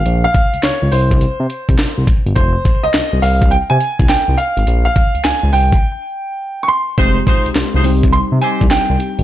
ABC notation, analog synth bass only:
X:1
M:4/4
L:1/16
Q:"Swing 16ths" 1/4=104
K:Cphr
V:1 name="Analog synth bass" clef=bass
B,,,2 z D,, D,, D,, C,,3 C, z C,, C,, C,, z G,,, | F,,,2 z C,, C,, C,, C,,3 C, z C,, C,, C,, z A,,, | B,,,2 z D,, D,, D,, C,,2 z8 | F,,,2 z C,, C,, C,, C,,3 C, z C,, C,, C,, z A,,, |]